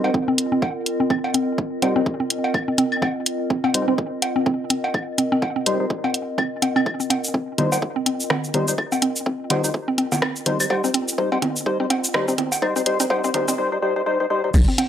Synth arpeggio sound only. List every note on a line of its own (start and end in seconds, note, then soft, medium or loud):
0.14 0.17 C4 medium
0.28 0.32 C4 loud
0.52 0.55 C4 medium
1.00 1.03 C4 medium
1.10 1.16 C4 loud
1.34 1.38 C4 medium
1.82 1.86 C4 medium
1.96 2.00 C4 loud
2.20 2.22 C4 medium
2.68 2.71 C4 medium
2.78 2.84 C4 loud
3.02 3.05 C4 medium
3.50 3.54 C4 medium
3.64 3.68 C4 loud
3.88 3.90 C4 medium
4.36 4.38 C4 medium
4.46 4.52 C4 loud
4.70 4.73 C4 medium
5.18 5.21 C4 medium
5.32 5.36 C4 loud
5.56 5.58 C4 medium
6.04 6.07 C4 medium
6.38 6.46 C4 medium
6.62 6.65 C4 medium
6.76 6.80 C4 loud
7.00 7.02 C4 medium
7.10 7.13 C4 medium
7.34 7.37 C4 medium
7.96 7.98 C4 medium
8.06 8.09 C4 medium
8.30 8.34 C4 medium
8.92 8.95 C4 medium
9.02 9.06 C4 medium
9.26 9.30 C4 medium
9.88 9.90 C4 medium
9.98 10.01 C4 medium
10.22 10.25 C4 medium
10.84 10.86 C4 medium
10.94 10.98 C4 medium
11.32 11.35 C4 medium
11.42 11.45 C4 medium
11.80 11.82 C4 medium
11.90 11.94 C4 medium
12.28 12.31 C4 medium
12.38 12.41 C4 medium
12.76 12.78 C4 medium
13.00 13.02 C4 medium
13.24 13.27 C4 medium
13.48 13.51 C4 medium
14.68 14.70 C4 medium
14.78 14.81 C4 medium